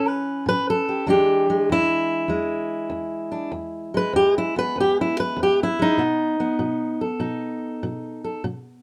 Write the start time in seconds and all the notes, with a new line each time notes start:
Already playing: A2 E3 C#4
0.08 B4
0.46 A2 B4
0.70 A4
0.89 G4
1.06 E2 E3 G#3 D4 G4
1.50 G#3
1.69 E2 E4
2.28 E2 G#3
2.90 E2
3.32 D4
3.52 E2
3.94 G#3 B4
4.13 E2 G4
4.38 E4
4.56 B3 B4
4.76 E2
4.80 G4
5.01 E4
5.20 B4
5.36 E2
5.43 G4
5.63 E4
5.79 G#3 D#4
5.98 B2 B3
6.40 B3
6.59 B2
7.01 A4
7.20 B2 D#4
7.83 B2
8.24 A4
8.44 B2